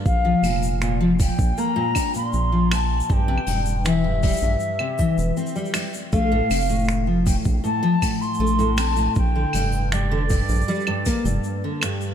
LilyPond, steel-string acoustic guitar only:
\new Staff \with { instrumentName = "Steel-string acoustic guitar" } { \clef bass \time 4/4 \key bes \major \tempo 4 = 79 r16 f16 bes,8 bes,16 f16 bes,8 bes16 bes,16 d'16 bes,8 f16 bes,8 | g,16 c16 g,8 e16 g,16 g16 g,8 c16 e16 r16 c'16 g16 g16 r16 | a16 a,16 c'16 a,8 f16 a,8 a,16 f16 a,8 a16 a,16 c'16 a,16 | r16 d16 g,8 g,16 d16 g,8 g16 g,16 bes16 g,8 d16 g,8 | }